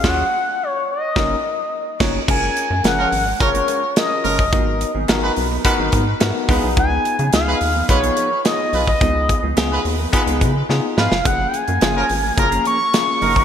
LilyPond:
<<
  \new Staff \with { instrumentName = "Analog synth lead" } { \time 4/4 \key fis \major \tempo 4 = 107 fis''4 cis''8 dis''2 r8 | gis''4 fis''4 cis''4 dis''8. dis''16~ | dis''8. r2. r16 | gis''4 eis''4 cis''4 dis''8. dis''16~ |
dis''8. r2 r8. eis''8 | fis''16. g''32 gis''4. ais''8 cis'''4. | }
  \new Staff \with { instrumentName = "Horn section" } { \time 4/4 \key fis \major r1 | r4 r16 <eis cis' ais'>16 r8 <eis cis' ais'>16 r4 r16 <eis cis' ais'>8 | r4 r16 <gis fis' b'>16 r8 <gis fis' b'>16 r4 r16 <gis eis' b'>8 | r4 r16 <gis eis' b'>16 r8 <gis eis' b'>16 r4 r16 <gis eis' b'>8 |
r4 r16 <gis eis' b'>16 r8 <gis eis' b'>16 r4 r16 <gis eis' b'>8 | r4 r16 <eis cis' ais'>16 r8 <eis cis' ais'>16 r4 r16 <fis dis' ais'>8 | }
  \new Staff \with { instrumentName = "Tine electric piano" } { \time 4/4 \key fis \major <cis' eis' fis' gis'>8 r4. <cis' dis' ais'>8 r4 <cis' dis' cis''>8 | <cis' eis' gis' ais'>8 r8 <eis cis' gis' ais'>8 r8 <cis' eis' gis' ais'>8 r8 <cis' eis' gis' ais'>8 r8 | <b dis' fis' ais'>8 r8 <b dis' fis' ais'>8 r8 <b dis' fis' ais'>8 r8 <b dis' fis' ais'>8 <b dis' eis' gis'>8~ | <b dis' eis' gis'>8 r8 <b dis' eis' gis'>8 r8 <b dis' eis' gis'>8 r8 <b dis' eis' gis'>8 r8 |
<b dis' eis' gis'>8 r8 <b dis' eis' gis'>8 r8 <b dis' eis' gis'>8 r8 <b dis' eis' gis'>8 r8 | <ais cis' eis' gis'>8 r8 <ais cis' eis' gis'>8 r8 <ais cis' eis' gis'>8 r8 <ais cis' eis' gis'>8 r8 | }
  \new Staff \with { instrumentName = "Clean electric guitar" } { \time 4/4 \key fis \major <fis cis' eis' gis'>8 r4. <ais dis' fis' cis''>8 r4 <ais dis' fis' ais'>8 | <gis cis' eis' ais'>16 r8 <gis cis' eis' ais'>16 <gis cis' eis' ais'>16 r8 <gis cis' eis' cis''>16 r16 <gis cis' eis' ais'>16 <gis cis' eis' cis''>16 r8. <gis cis' eis' ais'>16 <gis cis' ais'>16 | <fis b dis' gis'>16 r8 <fis b dis' gis'>16 <fis b dis' gis'>16 r8 <fis b dis' ais'>16 r16 <fis b dis' gis'>16 <fis b dis' ais'>16 r8. <eis b dis' gis'>16 <eis b dis' gis'>16 | <eis b dis' gis'>16 r8 <eis b dis' gis'>16 <eis b dis' gis'>16 r8 <eis b dis' ais'>16 r16 <eis b dis' gis'>16 <eis b dis' ais'>16 r4 r16 |
<eis b dis' gis'>16 r8 <eis b dis' gis'>16 <eis b dis' gis'>16 r8 <eis b dis' ais'>16 r16 <eis b dis' gis'>16 <eis b dis' ais'>16 r8. <eis b dis' gis'>16 r16 | <eis ais cis' gis'>16 r8 <eis ais cis' gis'>16 <eis ais cis' gis'>16 r8 <eis ais cis' ais'>16 r16 <eis ais cis' gis'>16 <eis ais cis' ais'>16 r8. <eis ais cis' gis'>16 <eis ais cis' gis'>16 | }
  \new Staff \with { instrumentName = "Analog synth bass" } { \clef bass \time 4/4 \key fis \major dis,8 r4. fis,,8 r4 fis,,8 | fis,,8 r16 fis,16 fis,,8 gis,,8 fis,,8 r4 fis,,8 | gis,,8. gis,,16 gis,,8 b,,8 r16 gis,,16 gis,8 gis,16 r16 cis,16 b,,16 | cis,8 r16 cis16 cis,8 dis,8 b,,8 r4 b,,8 |
cis,8. cis,16 cis,8 dis,8 r16 cis,16 cis8 cis16 r16 gis,16 eis,,16 | fis,,8 r16 fis,16 fis,,8 gis,,8 fis,,8 r4 fis,,8 | }
  \new DrumStaff \with { instrumentName = "Drums" } \drummode { \time 4/4 <cymc bd sn>4 r4 <bd sn>4 r8 <cymc bd sn>8 | <cymc bd>8 hh8 <hh sn>8 hho8 <hh bd>16 hh16 hh8 <hh sn>8 hho16 bd16 | <hh bd>8 hh8 <hh sn>8 hho8 <hh bd>8 <hh bd>8 <hh sn>8 <hho bd>8 | <hh bd>8 hh16 hh16 <hh sn>8 hho8 <hh bd>16 hh16 hh8 <hh sn>8 hho16 bd16 |
<hh bd>8 <hh bd>8 <hh sn>8 hho8 <hh bd>16 hh16 <hh bd>8 sn8 sn16 sn16 | <hh bd>8 hh16 hh16 <hh sn>8 hho8 <hh bd>16 hh16 hh8 <hh sn>8 hho16 bd16 | }
>>